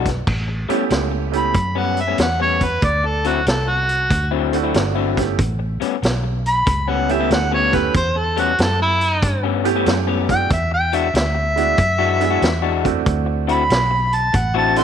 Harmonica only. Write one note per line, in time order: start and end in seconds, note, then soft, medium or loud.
1.36 1.80 B5 loud
1.78 2.02 F#5 loud
2.00 2.20 E5 medium
2.21 2.40 F#5 loud
2.42 2.64 C#5 medium
2.63 2.86 B4 medium
2.85 3.07 D5 medium
3.06 3.28 A4 loud
3.26 3.47 F#4 medium
3.48 3.71 A4 loud
3.69 4.31 F#4 loud
6.47 6.92 B5 loud
6.91 7.13 F#5 loud
7.11 7.31 E5 loud
7.32 7.52 F#5 medium
7.54 7.76 C#5 medium
7.75 7.95 B4 medium
7.96 8.19 C5 loud
8.18 8.41 A4 medium
8.40 8.62 F#4 medium
8.61 8.80 A4 loud
8.82 9.43 E4 loud
10.31 10.51 G5 loud
10.53 10.72 E5 loud
10.74 10.97 G5 loud
10.96 11.15 E5 medium
11.16 13.03 E5 loud
13.51 14.16 B5 loud
14.15 14.38 A5 loud
14.36 14.56 F#5 loud
14.57 14.77 A5 loud
14.78 14.84 C6 loud